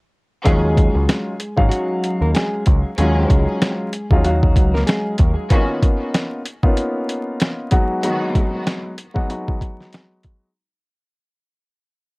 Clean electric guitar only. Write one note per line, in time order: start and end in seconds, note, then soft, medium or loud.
0.46 1.68 G#3 medium
0.46 1.68 G#4 loud
1.69 2.17 F#3 medium
1.69 2.17 F#4 medium
2.22 2.34 A#3 medium
2.22 2.34 A#4 medium
2.34 2.63 G#3 medium
2.34 2.63 G#4 medium
2.98 4.21 G#3 medium
2.98 4.20 G#4 medium
4.24 4.71 F#3 medium
4.24 4.71 F#4 medium
4.74 4.87 A#3 medium
4.74 4.86 A#4 medium
4.87 5.16 G#3 medium
4.87 5.15 G#4 medium